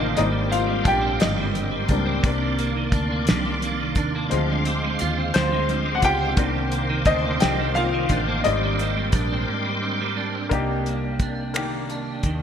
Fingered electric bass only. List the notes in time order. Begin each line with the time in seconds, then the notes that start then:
Already playing: A1
0.19 G#1
0.86 A#1
1.23 G1
1.90 C#2
2.25 C2
2.93 D2
3.29 C2
3.97 D#2
4.32 D2
5.02 D#2
5.36 D2
6.04 C#2
6.38 C2
7.07 D2
7.43 C2
8.11 A1
8.46 G#1
9.14 A#1
10.52 C2
12.24 D#2